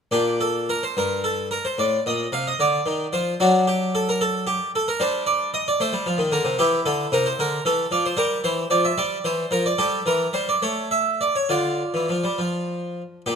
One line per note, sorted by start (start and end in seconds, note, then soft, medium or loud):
0.11 0.72 A#2 medium
0.11 1.74 D4 soft
0.11 0.40 G4 medium
0.41 0.68 A4 medium
0.69 0.83 A#4 medium
0.83 0.96 C5 medium
0.97 1.56 G2 medium
0.97 1.24 A#4 medium
1.24 1.47 A4 medium
1.51 1.65 A#4 medium
1.65 1.78 C5 medium
1.78 1.98 A2 medium
1.78 2.02 D5 medium
2.06 2.25 A#2 medium
2.06 2.29 D#5 medium
2.32 2.52 C3 medium
2.32 2.46 F5 medium
2.47 2.60 D#5 medium
2.60 2.79 D3 medium
2.60 3.14 D5 medium
2.86 3.05 D#3 medium
3.13 3.32 F3 soft
3.13 3.40 C5 medium
3.40 4.56 F#3 medium
3.40 4.96 D4 soft
3.40 3.64 F#4 medium
3.67 3.95 G4 medium
3.95 4.08 A4 medium
4.09 4.22 A#4 medium
4.21 4.44 A4 loud
4.47 4.70 G4 medium
4.75 4.88 A4 medium
4.88 5.01 A#4 medium
5.00 5.57 G3 medium
5.00 6.55 D4 soft
5.00 5.23 C5 medium
5.27 5.49 D5 loud
5.54 5.67 D#5 loud
5.68 5.80 D5 medium
5.80 5.93 A3 medium
5.80 6.33 C5 loud
5.93 6.05 G3 medium
6.06 6.19 F3 medium
6.18 6.31 D#3 medium
6.32 6.45 D3 medium
6.32 6.55 A#4 medium
6.45 6.58 C3 medium
6.59 6.78 E3 medium
6.59 7.35 E4 medium
6.59 6.82 G4 loud
6.86 7.05 D3 medium
6.86 7.12 A4 medium
7.12 7.31 C3 medium
7.12 7.26 A#4 loud
7.26 7.39 C5 medium
7.39 7.58 D3 medium
7.39 7.62 A#4 loud
7.65 7.84 E3 medium
7.65 7.92 A4 loud
7.91 8.10 F3 medium
7.91 8.05 D5 medium
8.06 8.18 C5 medium
8.17 8.36 G3 medium
8.17 8.92 G4 medium
8.17 8.40 A#4 loud
8.44 8.63 E3 medium
8.44 8.67 C5 loud
8.70 8.89 F3 medium
8.70 8.84 D5 loud
8.85 8.98 E5 medium
8.98 9.17 G3 medium
8.98 9.24 D5 loud
9.25 9.44 E3 medium
9.25 9.51 C5 medium
9.51 9.70 F3 medium
9.51 9.65 A#4 medium
9.66 9.79 D5 medium
9.78 9.98 G3 medium
9.78 10.57 G4 soft
9.78 10.01 A4 loud
10.06 10.25 E3 medium
10.06 10.34 A#4 medium
10.33 10.53 G3 medium
10.33 10.47 C5 medium
10.49 10.62 D5 medium
10.62 11.25 A3 medium
10.62 10.86 C#5 medium
10.91 11.20 E5 medium
11.21 11.35 D5 medium
11.36 11.50 C#5 medium
11.49 11.81 D3 medium
11.49 13.21 F4 soft
11.49 12.38 D5 medium
11.94 12.08 E3 soft
12.09 12.23 F3 medium
12.24 12.37 G3 soft
12.38 13.01 F3 medium
13.26 13.35 A#2 soft
13.26 13.35 G4 medium